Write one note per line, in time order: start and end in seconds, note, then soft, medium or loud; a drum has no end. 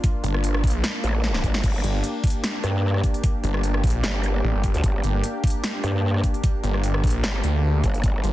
0.00 8.33 A#3 medium
0.00 8.33 D4 medium
0.00 1.62 F4 medium
0.00 kick loud
0.00 closed hi-hat medium
0.24 0.62 G1 loud
0.24 closed hi-hat medium
0.34 cross-stick medium
0.44 closed hi-hat medium
0.54 cross-stick medium
0.64 0.82 A#1 loud
0.64 kick loud
0.64 closed hi-hat soft
0.67 closed hi-hat medium
0.70 closed hi-hat medium
0.84 snare loud
0.84 closed hi-hat medium
1.04 1.42 A1 loud
1.04 closed hi-hat medium
1.24 snare medium
1.34 snare medium
1.44 1.62 G1 loud
1.44 kick medium
1.44 closed hi-hat medium
1.54 snare medium
1.54 closed hi-hat soft
1.64 1.82 G1 medium
1.64 8.02 G4 medium
1.64 kick loud
1.64 closed hi-hat medium
1.64 crash medium
1.84 2.02 G1 loud
1.84 closed hi-hat medium
2.04 closed hi-hat medium
2.24 kick loud
2.24 closed hi-hat medium
2.27 closed hi-hat medium
2.30 closed hi-hat medium
2.44 snare loud
2.44 closed hi-hat medium
2.64 3.02 G2 loud
2.64 cross-stick medium
2.64 closed hi-hat medium
2.94 cross-stick medium
3.04 kick medium
3.04 closed hi-hat medium
3.14 closed hi-hat soft
3.24 kick loud
3.24 closed hi-hat medium
3.44 3.82 G1 loud
3.44 closed hi-hat medium
3.54 cross-stick medium
3.64 closed hi-hat medium
3.74 cross-stick medium
3.84 4.02 A#1 loud
3.84 kick loud
3.84 closed hi-hat soft
3.87 closed hi-hat medium
3.90 closed hi-hat medium
4.04 4.42 G1 medium
4.04 snare loud
4.04 closed hi-hat medium
4.24 closed hi-hat medium
4.44 4.53 A1 loud
4.54 4.73 G1 loud
4.64 kick medium
4.64 closed hi-hat medium
4.74 4.82 D2 loud
4.74 closed hi-hat soft
4.84 5.02 G1 loud
4.84 kick loud
4.84 closed hi-hat medium
5.04 5.22 G1 loud
5.04 closed hi-hat medium
5.24 closed hi-hat medium
5.44 kick loud
5.44 closed hi-hat soft
5.47 closed hi-hat medium
5.50 closed hi-hat medium
5.64 snare loud
5.64 closed hi-hat medium
5.84 6.22 G2 loud
5.84 cross-stick medium
5.84 closed hi-hat medium
6.14 cross-stick soft
6.24 kick medium
6.24 closed hi-hat medium
6.34 closed hi-hat soft
6.44 kick loud
6.44 closed hi-hat medium
6.64 7.02 G1 loud
6.64 closed hi-hat medium
6.74 cross-stick medium
6.84 closed hi-hat medium
6.94 cross-stick medium
7.04 7.22 A#1 loud
7.04 kick loud
7.04 closed hi-hat soft
7.07 closed hi-hat medium
7.10 closed hi-hat medium
7.24 7.42 G1 medium
7.24 snare loud
7.24 closed hi-hat medium
7.44 7.82 D2 loud
7.44 closed hi-hat medium
7.84 8.02 G1 loud
7.84 kick medium
7.84 closed hi-hat medium
7.94 closed hi-hat soft
8.04 8.22 G1 medium
8.04 8.33 C5 medium
8.04 kick loud
8.04 closed hi-hat medium
8.24 8.33 G1 loud
8.24 closed hi-hat medium